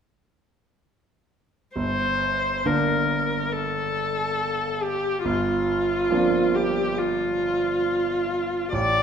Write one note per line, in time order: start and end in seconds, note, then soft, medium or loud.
1.76 2.63 G1 soft
1.76 2.67 C5 medium
2.65 5.21 D3 soft
2.65 5.21 A#3 soft
2.65 5.21 D4 soft
2.65 3.54 A#4 soft
3.52 4.83 A4 soft
4.82 5.25 G4 medium
5.25 6.09 G1 soft
5.25 6.56 F4 soft
6.11 8.69 F3 soft
6.11 8.69 A#3 soft
6.11 8.69 C4 soft
6.11 8.69 D4 soft
6.55 6.99 G4 soft
6.98 8.72 F4 medium
8.72 9.03 A1 soft
8.72 9.03 D5 medium